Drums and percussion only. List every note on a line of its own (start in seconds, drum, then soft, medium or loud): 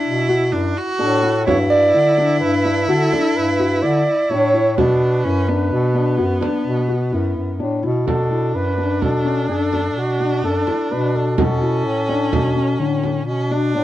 0.29 frame drum soft
0.53 frame drum soft
1.48 frame drum medium
2.65 frame drum soft
3.12 frame drum soft
3.60 frame drum soft
3.84 frame drum soft
4.78 frame drum medium
5.02 frame drum soft
5.72 frame drum soft
6.43 frame drum medium
6.90 frame drum soft
7.13 frame drum soft
7.61 frame drum soft
7.84 frame drum soft
8.08 frame drum soft
8.79 frame drum soft
9.02 frame drum soft
9.73 frame drum soft
10.67 frame drum soft
11.15 frame drum soft
11.38 frame drum medium
12.09 frame drum soft
12.33 frame drum medium
13.04 frame drum soft